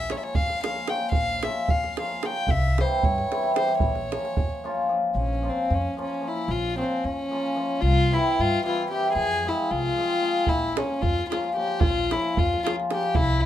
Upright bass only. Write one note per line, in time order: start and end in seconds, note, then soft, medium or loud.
0.00 0.13 A#1 medium
0.36 0.53 F2 medium
1.13 1.47 A#1 medium
1.69 1.86 F2 medium
2.47 2.81 C2 medium
3.05 3.21 G2 medium
3.82 4.15 A#1 medium
4.37 4.45 F2 medium
5.15 5.48 A#1 medium
5.70 5.87 F2 medium
6.48 6.81 A#1 medium
7.04 7.21 F2 medium
7.82 8.15 C2 medium
8.39 8.55 G2 medium
9.15 9.48 F2 medium
9.71 9.88 C2 medium
10.47 10.81 A#1 medium
11.03 11.20 F2 medium
11.81 12.15 A#1 medium
12.37 12.54 F2 medium
13.15 13.46 C2 medium